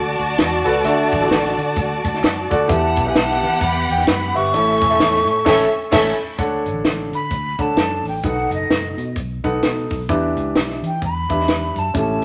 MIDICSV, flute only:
0, 0, Header, 1, 2, 480
1, 0, Start_track
1, 0, Key_signature, 2, "major"
1, 0, Tempo, 462250
1, 885, Time_signature, 4, 2, 24, 8
1, 12717, End_track
2, 0, Start_track
2, 0, Title_t, "Flute"
2, 0, Program_c, 0, 73
2, 2810, Note_on_c, 0, 81, 87
2, 3196, Note_off_c, 0, 81, 0
2, 3211, Note_on_c, 0, 80, 72
2, 3282, Note_on_c, 0, 81, 95
2, 3297, Note_off_c, 0, 80, 0
2, 3770, Note_on_c, 0, 83, 106
2, 3785, Note_off_c, 0, 81, 0
2, 4039, Note_off_c, 0, 83, 0
2, 4046, Note_on_c, 0, 79, 92
2, 4243, Note_on_c, 0, 83, 104
2, 4258, Note_off_c, 0, 79, 0
2, 4534, Note_on_c, 0, 85, 113
2, 4550, Note_off_c, 0, 83, 0
2, 6158, Note_off_c, 0, 85, 0
2, 7423, Note_on_c, 0, 83, 100
2, 7904, Note_on_c, 0, 81, 104
2, 7919, Note_off_c, 0, 83, 0
2, 8372, Note_off_c, 0, 81, 0
2, 8397, Note_on_c, 0, 79, 79
2, 8560, Note_off_c, 0, 79, 0
2, 8583, Note_on_c, 0, 78, 86
2, 8837, Note_off_c, 0, 78, 0
2, 8870, Note_on_c, 0, 75, 76
2, 9489, Note_off_c, 0, 75, 0
2, 11286, Note_on_c, 0, 79, 79
2, 11449, Note_off_c, 0, 79, 0
2, 11473, Note_on_c, 0, 83, 100
2, 12241, Note_on_c, 0, 81, 86
2, 12256, Note_off_c, 0, 83, 0
2, 12420, Note_off_c, 0, 81, 0
2, 12446, Note_on_c, 0, 81, 85
2, 12717, Note_off_c, 0, 81, 0
2, 12717, End_track
0, 0, End_of_file